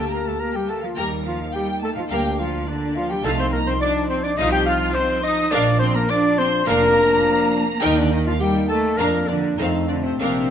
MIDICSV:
0, 0, Header, 1, 9, 480
1, 0, Start_track
1, 0, Key_signature, -2, "major"
1, 0, Tempo, 569260
1, 814, Time_signature, 4, 2, 24, 8
1, 5136, Tempo, 578035
1, 7536, Tempo, 607287
1, 8740, End_track
2, 0, Start_track
2, 0, Title_t, "Flute"
2, 0, Program_c, 0, 73
2, 0, Note_on_c, 0, 81, 61
2, 85, Note_off_c, 0, 81, 0
2, 90, Note_on_c, 0, 82, 63
2, 213, Note_on_c, 0, 81, 63
2, 226, Note_off_c, 0, 82, 0
2, 336, Note_on_c, 0, 82, 71
2, 348, Note_off_c, 0, 81, 0
2, 452, Note_off_c, 0, 82, 0
2, 457, Note_on_c, 0, 79, 64
2, 573, Note_off_c, 0, 79, 0
2, 578, Note_on_c, 0, 81, 62
2, 688, Note_off_c, 0, 81, 0
2, 693, Note_on_c, 0, 77, 62
2, 810, Note_off_c, 0, 77, 0
2, 819, Note_on_c, 0, 79, 65
2, 872, Note_off_c, 0, 79, 0
2, 1061, Note_on_c, 0, 77, 71
2, 1296, Note_on_c, 0, 79, 74
2, 1309, Note_off_c, 0, 77, 0
2, 1531, Note_off_c, 0, 79, 0
2, 1536, Note_on_c, 0, 81, 76
2, 1586, Note_off_c, 0, 81, 0
2, 1652, Note_on_c, 0, 77, 69
2, 1703, Note_off_c, 0, 77, 0
2, 1776, Note_on_c, 0, 79, 77
2, 2011, Note_off_c, 0, 79, 0
2, 2017, Note_on_c, 0, 77, 64
2, 2071, Note_off_c, 0, 77, 0
2, 2256, Note_on_c, 0, 74, 73
2, 2492, Note_on_c, 0, 77, 83
2, 2505, Note_off_c, 0, 74, 0
2, 2608, Note_on_c, 0, 79, 79
2, 2621, Note_off_c, 0, 77, 0
2, 2732, Note_on_c, 0, 81, 88
2, 2744, Note_off_c, 0, 79, 0
2, 2840, Note_off_c, 0, 81, 0
2, 2845, Note_on_c, 0, 84, 76
2, 2969, Note_on_c, 0, 82, 81
2, 2982, Note_off_c, 0, 84, 0
2, 3094, Note_on_c, 0, 84, 85
2, 3107, Note_off_c, 0, 82, 0
2, 3211, Note_on_c, 0, 86, 101
2, 3224, Note_off_c, 0, 84, 0
2, 3452, Note_off_c, 0, 86, 0
2, 3457, Note_on_c, 0, 84, 78
2, 3572, Note_off_c, 0, 84, 0
2, 3577, Note_on_c, 0, 86, 91
2, 3692, Note_on_c, 0, 87, 105
2, 3704, Note_off_c, 0, 86, 0
2, 3813, Note_off_c, 0, 87, 0
2, 3817, Note_on_c, 0, 91, 87
2, 3926, Note_off_c, 0, 91, 0
2, 3931, Note_on_c, 0, 89, 93
2, 4170, Note_on_c, 0, 84, 92
2, 4182, Note_off_c, 0, 89, 0
2, 4418, Note_on_c, 0, 87, 97
2, 4431, Note_off_c, 0, 84, 0
2, 4663, Note_on_c, 0, 86, 98
2, 4676, Note_off_c, 0, 87, 0
2, 4888, Note_on_c, 0, 84, 94
2, 4900, Note_off_c, 0, 86, 0
2, 5016, Note_on_c, 0, 82, 84
2, 5029, Note_off_c, 0, 84, 0
2, 5139, Note_on_c, 0, 86, 92
2, 5152, Note_off_c, 0, 82, 0
2, 5381, Note_on_c, 0, 84, 100
2, 5394, Note_off_c, 0, 86, 0
2, 5628, Note_on_c, 0, 82, 108
2, 5641, Note_off_c, 0, 84, 0
2, 6351, Note_off_c, 0, 82, 0
2, 6575, Note_on_c, 0, 75, 94
2, 6687, Note_off_c, 0, 75, 0
2, 6701, Note_on_c, 0, 74, 85
2, 6817, Note_on_c, 0, 75, 82
2, 6829, Note_off_c, 0, 74, 0
2, 6949, Note_on_c, 0, 77, 86
2, 6962, Note_off_c, 0, 75, 0
2, 7068, Note_on_c, 0, 79, 92
2, 7080, Note_off_c, 0, 77, 0
2, 7296, Note_off_c, 0, 79, 0
2, 7301, Note_on_c, 0, 81, 89
2, 7535, Note_off_c, 0, 81, 0
2, 7551, Note_on_c, 0, 82, 96
2, 7602, Note_off_c, 0, 82, 0
2, 7773, Note_on_c, 0, 74, 70
2, 8004, Note_off_c, 0, 74, 0
2, 8017, Note_on_c, 0, 75, 81
2, 8257, Note_on_c, 0, 74, 73
2, 8269, Note_off_c, 0, 75, 0
2, 8382, Note_on_c, 0, 72, 77
2, 8394, Note_off_c, 0, 74, 0
2, 8495, Note_off_c, 0, 72, 0
2, 8500, Note_on_c, 0, 72, 82
2, 8740, Note_off_c, 0, 72, 0
2, 8740, End_track
3, 0, Start_track
3, 0, Title_t, "Violin section"
3, 0, Program_c, 1, 48
3, 0, Note_on_c, 1, 81, 66
3, 85, Note_on_c, 1, 82, 70
3, 86, Note_off_c, 1, 81, 0
3, 208, Note_on_c, 1, 81, 67
3, 210, Note_off_c, 1, 82, 0
3, 321, Note_on_c, 1, 82, 61
3, 331, Note_off_c, 1, 81, 0
3, 443, Note_on_c, 1, 79, 67
3, 448, Note_off_c, 1, 82, 0
3, 566, Note_on_c, 1, 81, 66
3, 569, Note_off_c, 1, 79, 0
3, 677, Note_on_c, 1, 77, 64
3, 690, Note_off_c, 1, 81, 0
3, 728, Note_off_c, 1, 77, 0
3, 800, Note_on_c, 1, 79, 65
3, 867, Note_off_c, 1, 79, 0
3, 1039, Note_on_c, 1, 77, 71
3, 1280, Note_off_c, 1, 77, 0
3, 1293, Note_on_c, 1, 79, 81
3, 1527, Note_on_c, 1, 81, 80
3, 1534, Note_off_c, 1, 79, 0
3, 1644, Note_on_c, 1, 77, 66
3, 1649, Note_off_c, 1, 81, 0
3, 1768, Note_off_c, 1, 77, 0
3, 1769, Note_on_c, 1, 79, 78
3, 2008, Note_off_c, 1, 79, 0
3, 2013, Note_on_c, 1, 77, 72
3, 2247, Note_on_c, 1, 74, 69
3, 2249, Note_off_c, 1, 77, 0
3, 2490, Note_on_c, 1, 77, 74
3, 2492, Note_off_c, 1, 74, 0
3, 2613, Note_on_c, 1, 79, 82
3, 2614, Note_off_c, 1, 77, 0
3, 2730, Note_on_c, 1, 81, 85
3, 2736, Note_off_c, 1, 79, 0
3, 2855, Note_off_c, 1, 81, 0
3, 2860, Note_on_c, 1, 84, 81
3, 2908, Note_off_c, 1, 84, 0
3, 2980, Note_on_c, 1, 82, 85
3, 3097, Note_on_c, 1, 84, 82
3, 3099, Note_off_c, 1, 82, 0
3, 3215, Note_on_c, 1, 86, 96
3, 3220, Note_off_c, 1, 84, 0
3, 3282, Note_off_c, 1, 86, 0
3, 3458, Note_on_c, 1, 84, 69
3, 3506, Note_off_c, 1, 84, 0
3, 3573, Note_on_c, 1, 86, 80
3, 3622, Note_off_c, 1, 86, 0
3, 3694, Note_on_c, 1, 87, 98
3, 3811, Note_off_c, 1, 87, 0
3, 3819, Note_on_c, 1, 91, 97
3, 3934, Note_off_c, 1, 91, 0
3, 3943, Note_on_c, 1, 89, 89
3, 4174, Note_off_c, 1, 89, 0
3, 4188, Note_on_c, 1, 84, 91
3, 4417, Note_off_c, 1, 84, 0
3, 4423, Note_on_c, 1, 87, 93
3, 4658, Note_off_c, 1, 87, 0
3, 4660, Note_on_c, 1, 86, 89
3, 4727, Note_off_c, 1, 86, 0
3, 4900, Note_on_c, 1, 84, 98
3, 5016, Note_off_c, 1, 84, 0
3, 5017, Note_on_c, 1, 82, 92
3, 5065, Note_off_c, 1, 82, 0
3, 5130, Note_on_c, 1, 86, 96
3, 5196, Note_off_c, 1, 86, 0
3, 5373, Note_on_c, 1, 84, 97
3, 5613, Note_off_c, 1, 84, 0
3, 5614, Note_on_c, 1, 82, 114
3, 6554, Note_off_c, 1, 82, 0
3, 6570, Note_on_c, 1, 75, 92
3, 6693, Note_off_c, 1, 75, 0
3, 6694, Note_on_c, 1, 74, 83
3, 6813, Note_on_c, 1, 75, 85
3, 6815, Note_off_c, 1, 74, 0
3, 6935, Note_off_c, 1, 75, 0
3, 6937, Note_on_c, 1, 77, 88
3, 7055, Note_off_c, 1, 77, 0
3, 7058, Note_on_c, 1, 79, 89
3, 7291, Note_on_c, 1, 81, 86
3, 7297, Note_off_c, 1, 79, 0
3, 7358, Note_off_c, 1, 81, 0
3, 7538, Note_on_c, 1, 82, 95
3, 7601, Note_off_c, 1, 82, 0
3, 7773, Note_on_c, 1, 74, 80
3, 7837, Note_off_c, 1, 74, 0
3, 8005, Note_on_c, 1, 75, 71
3, 8068, Note_off_c, 1, 75, 0
3, 8247, Note_on_c, 1, 74, 74
3, 8295, Note_off_c, 1, 74, 0
3, 8369, Note_on_c, 1, 72, 72
3, 8486, Note_off_c, 1, 72, 0
3, 8495, Note_on_c, 1, 72, 83
3, 8740, Note_off_c, 1, 72, 0
3, 8740, End_track
4, 0, Start_track
4, 0, Title_t, "Violin section"
4, 0, Program_c, 2, 48
4, 823, Note_on_c, 2, 82, 63
4, 1040, Note_off_c, 2, 82, 0
4, 1780, Note_on_c, 2, 77, 71
4, 2002, Note_off_c, 2, 77, 0
4, 2745, Note_on_c, 2, 77, 74
4, 2967, Note_off_c, 2, 77, 0
4, 3697, Note_on_c, 2, 77, 76
4, 3918, Note_off_c, 2, 77, 0
4, 4655, Note_on_c, 2, 77, 85
4, 4878, Note_off_c, 2, 77, 0
4, 5620, Note_on_c, 2, 77, 81
4, 5845, Note_off_c, 2, 77, 0
4, 6570, Note_on_c, 2, 79, 84
4, 6797, Note_off_c, 2, 79, 0
4, 7542, Note_on_c, 2, 77, 76
4, 7757, Note_off_c, 2, 77, 0
4, 8017, Note_on_c, 2, 77, 76
4, 8235, Note_off_c, 2, 77, 0
4, 8495, Note_on_c, 2, 77, 70
4, 8723, Note_off_c, 2, 77, 0
4, 8740, End_track
5, 0, Start_track
5, 0, Title_t, "Clarinet"
5, 0, Program_c, 3, 71
5, 113, Note_on_c, 3, 70, 81
5, 236, Note_on_c, 3, 69, 81
5, 249, Note_off_c, 3, 70, 0
5, 339, Note_on_c, 3, 70, 92
5, 352, Note_off_c, 3, 69, 0
5, 472, Note_on_c, 3, 67, 81
5, 484, Note_off_c, 3, 70, 0
5, 590, Note_on_c, 3, 69, 75
5, 603, Note_off_c, 3, 67, 0
5, 725, Note_on_c, 3, 65, 71
5, 737, Note_off_c, 3, 69, 0
5, 829, Note_off_c, 3, 65, 0
5, 836, Note_on_c, 3, 67, 79
5, 938, Note_off_c, 3, 67, 0
5, 1075, Note_on_c, 3, 65, 81
5, 1177, Note_off_c, 3, 65, 0
5, 1309, Note_on_c, 3, 67, 90
5, 1414, Note_off_c, 3, 67, 0
5, 1555, Note_on_c, 3, 69, 90
5, 1605, Note_off_c, 3, 69, 0
5, 1678, Note_on_c, 3, 65, 80
5, 1727, Note_off_c, 3, 65, 0
5, 1790, Note_on_c, 3, 67, 90
5, 2024, Note_on_c, 3, 65, 91
5, 2036, Note_off_c, 3, 67, 0
5, 2260, Note_on_c, 3, 62, 100
5, 2272, Note_off_c, 3, 65, 0
5, 2492, Note_off_c, 3, 62, 0
5, 2497, Note_on_c, 3, 65, 88
5, 2621, Note_on_c, 3, 67, 86
5, 2633, Note_off_c, 3, 65, 0
5, 2735, Note_off_c, 3, 67, 0
5, 2740, Note_on_c, 3, 69, 103
5, 2794, Note_off_c, 3, 69, 0
5, 2864, Note_on_c, 3, 72, 94
5, 2917, Note_off_c, 3, 72, 0
5, 2970, Note_on_c, 3, 70, 89
5, 3027, Note_off_c, 3, 70, 0
5, 3093, Note_on_c, 3, 72, 93
5, 3149, Note_off_c, 3, 72, 0
5, 3213, Note_on_c, 3, 74, 111
5, 3322, Note_off_c, 3, 74, 0
5, 3452, Note_on_c, 3, 72, 86
5, 3571, Note_on_c, 3, 74, 96
5, 3584, Note_off_c, 3, 72, 0
5, 3682, Note_off_c, 3, 74, 0
5, 3687, Note_on_c, 3, 75, 111
5, 3806, Note_off_c, 3, 75, 0
5, 3811, Note_on_c, 3, 79, 101
5, 3865, Note_off_c, 3, 79, 0
5, 3927, Note_on_c, 3, 77, 108
5, 4037, Note_off_c, 3, 77, 0
5, 4163, Note_on_c, 3, 72, 120
5, 4404, Note_off_c, 3, 72, 0
5, 4413, Note_on_c, 3, 75, 104
5, 4643, Note_on_c, 3, 74, 116
5, 4655, Note_off_c, 3, 75, 0
5, 4879, Note_off_c, 3, 74, 0
5, 4884, Note_on_c, 3, 72, 103
5, 4941, Note_off_c, 3, 72, 0
5, 5021, Note_on_c, 3, 70, 105
5, 5145, Note_on_c, 3, 74, 119
5, 5157, Note_off_c, 3, 70, 0
5, 5381, Note_on_c, 3, 72, 117
5, 5393, Note_off_c, 3, 74, 0
5, 5612, Note_off_c, 3, 72, 0
5, 5617, Note_on_c, 3, 70, 127
5, 6331, Note_off_c, 3, 70, 0
5, 6581, Note_on_c, 3, 63, 118
5, 6707, Note_on_c, 3, 62, 106
5, 6719, Note_off_c, 3, 63, 0
5, 6808, Note_off_c, 3, 62, 0
5, 6813, Note_on_c, 3, 63, 101
5, 6868, Note_off_c, 3, 63, 0
5, 6942, Note_on_c, 3, 65, 97
5, 6995, Note_off_c, 3, 65, 0
5, 7055, Note_on_c, 3, 67, 100
5, 7164, Note_off_c, 3, 67, 0
5, 7298, Note_on_c, 3, 69, 107
5, 7529, Note_on_c, 3, 70, 98
5, 7541, Note_off_c, 3, 69, 0
5, 7769, Note_on_c, 3, 62, 93
5, 7781, Note_off_c, 3, 70, 0
5, 8006, Note_on_c, 3, 63, 105
5, 8018, Note_off_c, 3, 62, 0
5, 8244, Note_off_c, 3, 63, 0
5, 8249, Note_on_c, 3, 62, 82
5, 8303, Note_off_c, 3, 62, 0
5, 8378, Note_on_c, 3, 60, 76
5, 8494, Note_off_c, 3, 60, 0
5, 8502, Note_on_c, 3, 60, 101
5, 8740, Note_off_c, 3, 60, 0
5, 8740, End_track
6, 0, Start_track
6, 0, Title_t, "Viola section"
6, 0, Program_c, 4, 48
6, 817, Note_on_c, 4, 58, 61
6, 820, Note_on_c, 4, 70, 65
6, 1037, Note_off_c, 4, 58, 0
6, 1038, Note_off_c, 4, 70, 0
6, 1778, Note_on_c, 4, 70, 62
6, 1780, Note_on_c, 4, 58, 71
6, 2001, Note_off_c, 4, 70, 0
6, 2002, Note_off_c, 4, 58, 0
6, 2736, Note_on_c, 4, 63, 74
6, 2738, Note_on_c, 4, 65, 72
6, 2962, Note_off_c, 4, 63, 0
6, 2963, Note_off_c, 4, 65, 0
6, 3701, Note_on_c, 4, 63, 76
6, 3702, Note_on_c, 4, 65, 74
6, 3920, Note_off_c, 4, 63, 0
6, 3921, Note_off_c, 4, 65, 0
6, 4655, Note_on_c, 4, 62, 89
6, 4656, Note_on_c, 4, 70, 82
6, 4878, Note_off_c, 4, 62, 0
6, 4879, Note_off_c, 4, 70, 0
6, 5620, Note_on_c, 4, 70, 83
6, 5625, Note_on_c, 4, 62, 79
6, 5846, Note_off_c, 4, 70, 0
6, 5848, Note_off_c, 4, 62, 0
6, 6570, Note_on_c, 4, 63, 85
6, 6573, Note_on_c, 4, 70, 86
6, 6796, Note_off_c, 4, 63, 0
6, 6798, Note_off_c, 4, 70, 0
6, 7537, Note_on_c, 4, 62, 74
6, 7538, Note_on_c, 4, 70, 77
6, 7754, Note_off_c, 4, 62, 0
6, 7755, Note_off_c, 4, 70, 0
6, 8015, Note_on_c, 4, 69, 69
6, 8016, Note_on_c, 4, 60, 71
6, 8234, Note_off_c, 4, 69, 0
6, 8235, Note_off_c, 4, 60, 0
6, 8500, Note_on_c, 4, 62, 72
6, 8501, Note_on_c, 4, 70, 71
6, 8725, Note_off_c, 4, 62, 0
6, 8726, Note_off_c, 4, 70, 0
6, 8740, End_track
7, 0, Start_track
7, 0, Title_t, "French horn section"
7, 0, Program_c, 5, 60
7, 0, Note_on_c, 5, 58, 64
7, 0, Note_on_c, 5, 67, 65
7, 661, Note_off_c, 5, 67, 0
7, 805, Note_on_c, 5, 63, 66
7, 1752, Note_off_c, 5, 63, 0
7, 1773, Note_on_c, 5, 62, 67
7, 2706, Note_off_c, 5, 58, 0
7, 2737, Note_off_c, 5, 62, 0
7, 2748, Note_on_c, 5, 53, 81
7, 2748, Note_on_c, 5, 63, 76
7, 3668, Note_off_c, 5, 53, 0
7, 3668, Note_off_c, 5, 63, 0
7, 3700, Note_on_c, 5, 53, 80
7, 3704, Note_on_c, 5, 63, 78
7, 4148, Note_off_c, 5, 53, 0
7, 4156, Note_off_c, 5, 63, 0
7, 4158, Note_on_c, 5, 53, 79
7, 4166, Note_on_c, 5, 63, 75
7, 4636, Note_off_c, 5, 53, 0
7, 4640, Note_off_c, 5, 63, 0
7, 4651, Note_on_c, 5, 53, 86
7, 4656, Note_on_c, 5, 62, 86
7, 5121, Note_off_c, 5, 53, 0
7, 5125, Note_off_c, 5, 62, 0
7, 5131, Note_on_c, 5, 53, 89
7, 5135, Note_on_c, 5, 62, 84
7, 5593, Note_off_c, 5, 53, 0
7, 5593, Note_off_c, 5, 62, 0
7, 5603, Note_on_c, 5, 53, 88
7, 5603, Note_on_c, 5, 62, 81
7, 6425, Note_off_c, 5, 53, 0
7, 6425, Note_off_c, 5, 62, 0
7, 6566, Note_on_c, 5, 58, 83
7, 6569, Note_on_c, 5, 63, 87
7, 7019, Note_off_c, 5, 58, 0
7, 7020, Note_off_c, 5, 63, 0
7, 7054, Note_on_c, 5, 58, 84
7, 7063, Note_on_c, 5, 63, 87
7, 7523, Note_off_c, 5, 58, 0
7, 7531, Note_on_c, 5, 62, 75
7, 7532, Note_off_c, 5, 63, 0
7, 7533, Note_on_c, 5, 58, 69
7, 7995, Note_off_c, 5, 58, 0
7, 8004, Note_off_c, 5, 62, 0
7, 8014, Note_on_c, 5, 57, 75
7, 8015, Note_on_c, 5, 60, 77
7, 8488, Note_on_c, 5, 62, 72
7, 8489, Note_on_c, 5, 58, 78
7, 8494, Note_off_c, 5, 57, 0
7, 8495, Note_off_c, 5, 60, 0
7, 8740, Note_off_c, 5, 58, 0
7, 8740, Note_off_c, 5, 62, 0
7, 8740, End_track
8, 0, Start_track
8, 0, Title_t, "Cello section"
8, 0, Program_c, 6, 48
8, 0, Note_on_c, 6, 57, 67
8, 103, Note_off_c, 6, 57, 0
8, 103, Note_on_c, 6, 58, 65
8, 149, Note_off_c, 6, 58, 0
8, 223, Note_on_c, 6, 57, 59
8, 270, Note_off_c, 6, 57, 0
8, 343, Note_on_c, 6, 58, 70
8, 456, Note_off_c, 6, 58, 0
8, 458, Note_on_c, 6, 55, 63
8, 576, Note_off_c, 6, 55, 0
8, 578, Note_on_c, 6, 57, 67
8, 696, Note_off_c, 6, 57, 0
8, 697, Note_on_c, 6, 53, 63
8, 744, Note_off_c, 6, 53, 0
8, 817, Note_on_c, 6, 55, 72
8, 1049, Note_off_c, 6, 55, 0
8, 1051, Note_on_c, 6, 53, 70
8, 1290, Note_on_c, 6, 55, 74
8, 1291, Note_off_c, 6, 53, 0
8, 1528, Note_off_c, 6, 55, 0
8, 1530, Note_on_c, 6, 57, 79
8, 1579, Note_off_c, 6, 57, 0
8, 1651, Note_on_c, 6, 53, 69
8, 1700, Note_off_c, 6, 53, 0
8, 1771, Note_on_c, 6, 55, 69
8, 1838, Note_off_c, 6, 55, 0
8, 2018, Note_on_c, 6, 53, 75
8, 2251, Note_off_c, 6, 53, 0
8, 2259, Note_on_c, 6, 50, 71
8, 2493, Note_off_c, 6, 50, 0
8, 2499, Note_on_c, 6, 53, 77
8, 2619, Note_off_c, 6, 53, 0
8, 2622, Note_on_c, 6, 55, 76
8, 2741, Note_off_c, 6, 55, 0
8, 2741, Note_on_c, 6, 57, 90
8, 2858, Note_off_c, 6, 57, 0
8, 2865, Note_on_c, 6, 60, 78
8, 2980, Note_on_c, 6, 58, 80
8, 2983, Note_off_c, 6, 60, 0
8, 3097, Note_on_c, 6, 60, 80
8, 3101, Note_off_c, 6, 58, 0
8, 3146, Note_off_c, 6, 60, 0
8, 3216, Note_on_c, 6, 62, 102
8, 3452, Note_on_c, 6, 60, 78
8, 3453, Note_off_c, 6, 62, 0
8, 3572, Note_off_c, 6, 60, 0
8, 3572, Note_on_c, 6, 62, 87
8, 3621, Note_off_c, 6, 62, 0
8, 3688, Note_on_c, 6, 63, 95
8, 3808, Note_off_c, 6, 63, 0
8, 3808, Note_on_c, 6, 67, 90
8, 3923, Note_on_c, 6, 65, 92
8, 3931, Note_off_c, 6, 67, 0
8, 4169, Note_off_c, 6, 65, 0
8, 4175, Note_on_c, 6, 60, 90
8, 4415, Note_off_c, 6, 60, 0
8, 4415, Note_on_c, 6, 63, 92
8, 4649, Note_off_c, 6, 63, 0
8, 4661, Note_on_c, 6, 62, 96
8, 4729, Note_off_c, 6, 62, 0
8, 4900, Note_on_c, 6, 60, 95
8, 5016, Note_off_c, 6, 60, 0
8, 5018, Note_on_c, 6, 58, 91
8, 5137, Note_on_c, 6, 62, 95
8, 5139, Note_off_c, 6, 58, 0
8, 5379, Note_off_c, 6, 62, 0
8, 5381, Note_on_c, 6, 60, 92
8, 5448, Note_off_c, 6, 60, 0
8, 5619, Note_on_c, 6, 58, 102
8, 6557, Note_off_c, 6, 58, 0
8, 6578, Note_on_c, 6, 51, 93
8, 6693, Note_on_c, 6, 50, 87
8, 6695, Note_off_c, 6, 51, 0
8, 6814, Note_on_c, 6, 51, 87
8, 6815, Note_off_c, 6, 50, 0
8, 6936, Note_off_c, 6, 51, 0
8, 6940, Note_on_c, 6, 53, 83
8, 7052, Note_on_c, 6, 55, 88
8, 7059, Note_off_c, 6, 53, 0
8, 7290, Note_off_c, 6, 55, 0
8, 7295, Note_on_c, 6, 57, 95
8, 7532, Note_off_c, 6, 57, 0
8, 7544, Note_on_c, 6, 58, 80
8, 7608, Note_off_c, 6, 58, 0
8, 7774, Note_on_c, 6, 50, 85
8, 8004, Note_off_c, 6, 50, 0
8, 8014, Note_on_c, 6, 51, 78
8, 8078, Note_off_c, 6, 51, 0
8, 8254, Note_on_c, 6, 50, 79
8, 8365, Note_on_c, 6, 48, 72
8, 8370, Note_off_c, 6, 50, 0
8, 8487, Note_off_c, 6, 48, 0
8, 8496, Note_on_c, 6, 48, 79
8, 8740, Note_off_c, 6, 48, 0
8, 8740, End_track
9, 0, Start_track
9, 0, Title_t, "Double bass section"
9, 0, Program_c, 7, 48
9, 0, Note_on_c, 7, 38, 67
9, 256, Note_off_c, 7, 38, 0
9, 813, Note_on_c, 7, 39, 68
9, 1211, Note_off_c, 7, 39, 0
9, 1774, Note_on_c, 7, 38, 77
9, 2174, Note_off_c, 7, 38, 0
9, 2734, Note_on_c, 7, 36, 88
9, 3139, Note_off_c, 7, 36, 0
9, 3697, Note_on_c, 7, 36, 90
9, 4094, Note_off_c, 7, 36, 0
9, 4654, Note_on_c, 7, 34, 85
9, 5056, Note_off_c, 7, 34, 0
9, 5623, Note_on_c, 7, 29, 90
9, 6023, Note_off_c, 7, 29, 0
9, 6572, Note_on_c, 7, 39, 101
9, 6974, Note_off_c, 7, 39, 0
9, 7538, Note_on_c, 7, 41, 90
9, 7928, Note_off_c, 7, 41, 0
9, 8006, Note_on_c, 7, 41, 83
9, 8409, Note_off_c, 7, 41, 0
9, 8497, Note_on_c, 7, 34, 77
9, 8740, Note_off_c, 7, 34, 0
9, 8740, End_track
0, 0, End_of_file